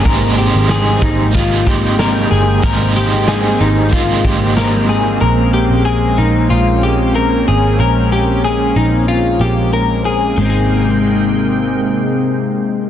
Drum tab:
HH |xxxxxxxx|xxxxxxxx|--------|--------|
SD |--o---o-|--o---o-|--------|--------|
BD |o--ooo--|o---oo--|--------|--------|

HH |--------|
SD |--------|
BD |--------|